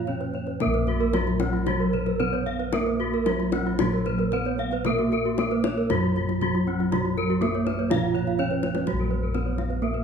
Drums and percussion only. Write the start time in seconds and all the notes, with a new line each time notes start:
0.07 kendang slap, kendang low
0.21 kendang slap
0.34 kendang slap
0.47 kendang slap
0.60 kendang high, kendang low
0.74 kendang slap
0.87 kendang slap
1.13 kendang high
1.27 kendang slap
1.40 kendang slap, kendang high
1.67 kendang slap, kendang high, kendang low
1.93 kendang low
2.06 kendang slap
2.20 kendang slap, kendang low
2.33 kendang slap
2.46 kendang slap
2.60 kendang slap
2.73 kendang high, kendang low
2.86 kendang slap
3.26 kendang high
3.40 kendang slap
3.52 kendang slap, kendang high
3.79 kendang slap, kendang high, kendang low
4.06 kendang low
4.18 kendang slap
4.32 kendang slap, kendang low
4.45 kendang slap
4.58 kendang slap
4.71 kendang slap
4.85 kendang high, kendang low
4.99 kendang slap
5.12 kendang slap
5.38 kendang high
5.51 kendang slap
5.64 kendang slap, kendang high
5.90 kendang slap, kendang high, kendang low
6.16 kendang low
6.29 kendang slap
6.41 kendang slap, kendang low
6.55 kendang slap
6.67 kendang slap
6.80 kendang slap
6.92 kendang high, kendang low
7.05 kendang slap
7.18 kendang slap
7.42 kendang high
7.54 kendang slap
7.67 kendang slap, kendang high
7.91 kendang slap, kendang high, kendang low
8.15 kendang low
8.27 kendang slap
8.39 kendang low
8.51 kendang low
8.63 kendang high
8.75 kendang high
8.87 kendang high, kendang low
8.99 kendang slap
9.34 kendang high
9.58 kendang slap, kendang high
9.71 kendang slap
9.82 kendang slap
9.94 kendang slap